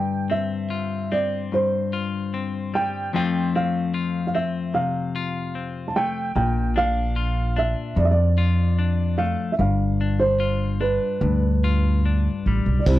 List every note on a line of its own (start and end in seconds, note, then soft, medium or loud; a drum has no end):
0.00 1.51 G2 medium
0.00 3.13 D3 soft
0.00 0.32 G5 medium
0.30 1.11 C4 soft
0.30 1.14 E5 medium
0.70 1.93 F4 soft
1.12 2.33 C4 medium
1.12 1.49 D5 medium
1.52 3.09 G2 soft
1.52 2.78 C5 medium
1.93 3.16 F4 soft
2.34 3.09 C4 soft
2.74 3.14 G3 soft
2.74 3.12 G5 medium
3.13 6.31 F2 medium
3.13 6.64 F3 medium
3.13 5.95 A3 soft
3.13 3.54 C4 soft
3.13 3.94 F4 medium
3.13 3.52 G5 medium
3.55 4.33 C4 soft
3.55 4.25 F5 medium
3.94 5.15 F4 medium
4.27 4.34 F5 medium
4.35 5.54 C4 soft
4.35 4.77 E5 medium
4.74 6.31 C3 medium
4.74 5.92 F5 medium
5.16 7.16 F4 medium
5.55 6.31 C4 soft
5.88 5.95 A5 medium
5.96 6.32 A3 soft
5.96 6.35 G5 medium
6.36 7.73 A#1 medium
6.36 7.97 A#2 medium
6.36 6.78 G5 medium
6.76 7.56 D4 medium
6.76 7.60 F5 loud
7.16 8.37 F4 soft
7.56 8.78 D4 medium
7.56 7.99 E5 medium
7.96 9.54 F2 medium
7.96 9.35 F2 medium
7.96 8.05 D5 medium
8.05 8.11 E5 medium
8.11 9.22 D5 medium
8.38 9.54 F4 medium
8.79 10.00 D4 soft
9.18 9.54 A3 soft
9.18 9.53 F5 medium
9.52 9.59 E5 medium
9.59 10.97 G1 medium
9.59 11.20 G2 medium
9.59 10.22 F5 medium
10.01 10.79 D4 soft
10.20 10.82 C5 medium
10.40 11.62 F4 soft
10.81 12.04 D4 soft
10.81 12.41 B4 medium
11.21 12.27 D2 medium
11.21 12.81 G2 medium
11.64 12.82 F4 medium
12.06 12.82 D4 soft
12.46 12.64 A1 medium
12.46 12.99 G3 soft
12.66 12.84 B1 medium
12.79 12.86 D5 soft
12.86 12.99 C2 medium
12.86 12.99 C3 medium
12.86 12.99 C4 medium
12.86 12.99 D4 medium
12.86 12.99 E4 medium
12.86 12.99 E4 soft
12.86 12.99 G4 soft
12.86 12.99 C5 medium
12.86 kick medium
12.86 crash medium